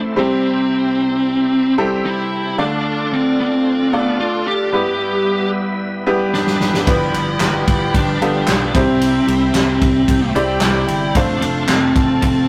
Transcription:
Already playing: A2 A3 C4 E4 A4 C5
0.16 C3 G3 C4 E4 G4 C5
1.78 G3 C4 E4 G4 A4
2.05 E4
2.57 D3 A3 D4 F4 A4 D5
3.13 C4
3.41 C4
3.93 A3 B3 D4 F4 A4 D5
4.20 F4
4.48 G4
4.72 G2 G3 B3 E4 G4 B4
6.06 G3 B3 E4 G4 B4
6.34 D4, snare
6.47 snare
6.61 snare
6.74 snare
6.86 G1 G2 F3 B3 D4 E4 G4 B4 G5, kick, ride
7.14 G1, ride
7.40 G1 E4, snare, clap, ride
7.68 G1, kick, ride
7.94 G1 D4, kick, ride
8.21 G1 B3 D4 F4 G4 A4, ride
8.47 B1, snare, clap, ride
8.74 C2 C3 G3 C4 E4 G4 C5 E5, kick, ride
9.01 ride
9.27 C2, ride
9.54 C2, snare, clap, ride
9.82 C2, kick, ride
10.07 C2 G4 G5, kick, ride
10.35 C2 G3 C4 E4 G4 D5, ride
10.61 C2 E4, snare, clap, ride
10.88 G1, ride
11.15 F1 A3 C4 D4 F4 A4 C5 A5, kick, ride
11.41 F1 D4, ride
11.68 F1 C4, snare, clap, ride
11.96 F1, kick, ride
12.22 F1 C4, kick, ride

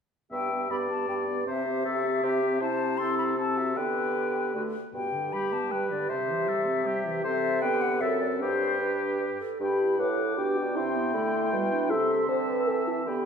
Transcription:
0.31 G2 B3 G4 E5 G5
0.52 B3 G4
0.70 G2 B3 G4 D5 B5
0.89 B3 G4 A5
1.08 G2 B3 G4 G5
1.27 B3 G4 D5
1.46 C3 C4 G4 C5 E5
1.66 C4 G4
1.85 C3 C4 G4 A4
2.04 C4 G4
2.23 C3 C4 G4
2.42 C4 G4
2.61 C3 C4 E4 C5 A5
2.98 C4 E4 A4 C6
3.18 B5
3.37 C4 E4 A4 A5
3.57 F#4 E5
3.76 D3 B3 G4 B4 G5
4.55 D3 A3 F#4
4.93 G2 B2 G4 G5
5.14 D3
5.33 G3 G4 B5
5.53 B3 A5
5.71 G3 B4 G5
5.90 D3 D5
6.09 C3 C5 E5
6.29 E3
6.48 G3 A4
6.67 C4
6.86 G3 G4
7.06 E3
7.24 C3 C4 A4 C5 E5
7.62 D3 B3 G4 B4 G5
7.82 F#5
8.01 F#2 C4 A4 E5
8.21 D5
8.40 G2 D4 G4 C5
8.81 D4 G4 B4
9.20 B4
9.41 A4
9.60 G2 D4 G4 G5 B5
9.80 E4
9.99 A2 B4 F#5 D6
10.19 A4
10.37 B2 D4 G4 G5
10.57 D4
10.76 C3 C4 E4 G5 C6
10.95 B3
11.14 D3 A3 B5
11.34 C6
11.52 B2 G3
11.72 D4
11.90 C3 C4 A4 E5 C6
12.09 E5
12.28 D3 C5 A5
12.48 B4
12.67 E3 A4
12.87 E4
13.06 D3 B3 G4 G5 B5

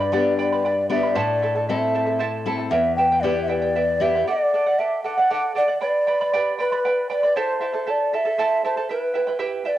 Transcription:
Already playing: G2 D5
0.00 B4 D5 B5
0.12 B3 D4 G4 B4 D5 G5 B5
0.38 B4 D5 G5 B5
0.52 B4 D5 B5
0.65 B4 D5 G5 B5
0.90 B3 D4 G4 B4 D5 E5 G5 B5
1.03 B4 D5 B5
1.15 A2 E4 A4 C5 D5 E5 A5
1.42 E4 A4 E5 A5
1.55 E4 A4 A5
1.68 C4 E4 A4 E5 A5
1.95 E4 A4 E5 A5
2.06 E4 A4 A5
2.19 E4 A4 C5 E5 A5
2.46 C4 E4 A4 E5 A5
2.58 E4 A4 A5
2.70 E2 E4 B4 E5 G5
2.96 E4 B4 E5 G5
3.12 E4 B4 G5
3.21 B3 E4 G4 B4 D5 E5
3.25 G5
3.42 E5
3.48 E4 B4 D5 E5 G5
3.62 E4 B4 G5
3.75 E4 B4 E5 G5
4.00 B3 E4 G4 B4 E5 G5
4.15 E4 B4 G5
4.27 A4 D5 F#5
4.54 A4 D5 F#5
4.66 D5 F#5
4.78 A4 D5 E5 F#5
5.04 A4 D5 F#5
5.18 D5 F#5
5.30 A4 D5 F#5
5.55 A4 D5 F#5
5.68 D5 F#5
5.81 B4 D5 G5 B5
6.07 B4 D5 G5 B5
6.21 B4 D5 B5
6.33 G4 B4 D5 G5 B5
6.59 B4 D5 G5 B5
6.72 B4 D5 B5
6.85 B4 D5 G5 B5
7.10 B4 D5 G5 B5
7.23 B4 D5 B5
7.36 E4 A4 C5 E5 A5
7.61 E4 A4 E5 A5
7.74 E4 A4 A5
7.87 E4 A4 D5 E5 A5
8.13 E4 A4 E5 A5
8.25 E4 A4 A5
8.38 E4 A4 C5 E5 A5
8.64 E4 A4 C5 E5 A5
8.77 E4 A4 A5
8.89 E4 B4 E5 G5
9.14 E4 B4 E5 G5
9.27 E4 B4 G5
9.39 E4 G4 B4 E5 G5
9.65 E4 B4 D5 E5 G5

